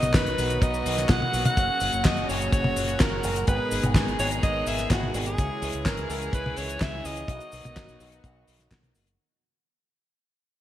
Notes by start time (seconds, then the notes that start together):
Already playing: B2 D#3 F#3 B3 D#4 F#4 B4 D#5
0.02 B1, closed hi-hat, high tom, cabasa
0.14 F#1 B4, kick, snare, clap, closed hi-hat, cabasa
0.26 B1, closed hi-hat
0.38 B1 B2 B3 D#4 F#4 B4, open hi-hat, cabasa
0.50 B2 B3 D#4 F#4 B4, closed hi-hat, cabasa
0.62 B1 D#5, kick, closed hi-hat, cabasa
0.74 cabasa
0.86 B1, open hi-hat, cabasa
0.98 snare, closed hi-hat, cabasa
1.09 B1 F#5, kick, snare, clap, closed hi-hat, cabasa
1.22 high tom
1.33 B1, open hi-hat, cabasa
1.45 F#5, closed hi-hat, high tom, cabasa
1.57 F#1 A#2 C#3 F#3 A#3 C#4 F#4, kick, closed hi-hat, cabasa
1.80 F#1, open hi-hat, cabasa
1.92 F#1, closed hi-hat, cabasa
2.04 F#2 D#5, kick, snare, clap, closed hi-hat, cabasa
2.17 F#1, closed hi-hat
2.29 F#1 F#3 A#3 C#4 F#4 C#5, open hi-hat, cabasa
2.41 F#3 A#3 C#4 F#4, closed hi-hat, cabasa
2.52 F#1 C#5, kick, closed hi-hat, cabasa
2.64 high tom
2.76 F#1, open hi-hat, cabasa
2.88 closed hi-hat, cabasa
3.00 F#1 A#4, kick, snare, clap, closed hi-hat, cabasa
3.24 F#1, open hi-hat, cabasa
3.36 closed hi-hat, cabasa
3.47 G#1 G#2 B2 D#3 G#3 B3 D#4 G#4 B4, kick, closed hi-hat, cabasa
3.71 G#1, open hi-hat, cabasa
3.83 G#1, closed hi-hat, high tom, cabasa
3.94 G#2, kick, snare, clap, closed hi-hat, cabasa
4.07 G#1, closed hi-hat
4.19 G#1 G#2 B3 D#4 G#4 B4 C#5, open hi-hat, cabasa
4.31 G#2 B3 D#4 G#4 B4, closed hi-hat, cabasa
4.43 G#1 D#5, kick, closed hi-hat, cabasa
4.67 G#1 E5, open hi-hat, cabasa
4.78 snare, closed hi-hat, cabasa
4.90 G#1 F#4, kick, snare, clap, closed hi-hat, cabasa
5.03 high tom
5.14 G#1, open hi-hat, cabasa
5.26 G#4, closed hi-hat, cabasa
5.38 C#2 C#3 E3 C#4 E4 G#4 C#5, kick, closed hi-hat, cabasa
5.62 C#2, open hi-hat, cabasa
5.73 C#2, closed hi-hat, cabasa
5.85 G#1 A#4, kick, snare, clap, closed hi-hat, cabasa
5.97 C#2, closed hi-hat
6.10 C#2 C#3 C#4 E4 G#4 A#4 C#5, open hi-hat, cabasa
6.21 C#3 C#4 E4 G#4 C#5, closed hi-hat, cabasa
6.33 C#2 B4, kick, closed hi-hat, cabasa
6.46 high tom
6.56 C#2 C#5, open hi-hat, cabasa
6.69 closed hi-hat, cabasa
6.80 C#2 E5, kick, snare, clap, closed hi-hat, cabasa
7.05 C#2 D#5, open hi-hat, cabasa
7.16 closed hi-hat, cabasa
7.28 B1 B2 D#3 F#3 B3 D#4 F#4 B4, kick, closed hi-hat, cabasa
7.40 closed hi-hat, cabasa
7.52 B1, open hi-hat, cabasa
7.64 B1, closed hi-hat, high tom, cabasa
7.76 F#1, kick, snare, clap, closed hi-hat, cabasa
7.88 B1, closed hi-hat, cabasa
8.00 B1 B2 B3 D#4 F#4 B4, open hi-hat, cabasa
8.12 B2 B3 D#4 F#4 B4, closed hi-hat, cabasa
8.24 B1, kick, closed hi-hat, cabasa
8.48 B1, open hi-hat, cabasa
8.59 B2 B3 D#4 F#4 B4, snare, closed hi-hat, cabasa
8.71 B1, kick, snare, clap, closed hi-hat, cabasa
8.83 closed hi-hat, high tom
8.95 F#1, open hi-hat, cabasa
9.07 closed hi-hat, cabasa